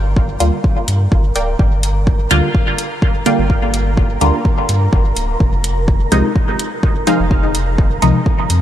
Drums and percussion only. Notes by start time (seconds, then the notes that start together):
0.17 kick
0.40 closed hi-hat
0.64 kick
0.88 closed hi-hat
1.12 kick
1.36 closed hi-hat
1.59 kick
1.83 closed hi-hat
2.07 kick
2.31 closed hi-hat
2.55 kick
2.78 closed hi-hat
3.02 kick
3.26 closed hi-hat
3.50 kick
3.74 closed hi-hat
3.97 kick
4.21 closed hi-hat
4.45 kick
4.69 closed hi-hat
4.93 kick
5.17 closed hi-hat
5.40 kick
5.64 closed hi-hat
5.88 kick
6.12 closed hi-hat
6.36 kick
6.59 closed hi-hat
6.83 kick
7.07 closed hi-hat
7.31 kick
7.55 closed hi-hat
7.78 kick
8.02 closed hi-hat
8.26 kick
8.50 closed hi-hat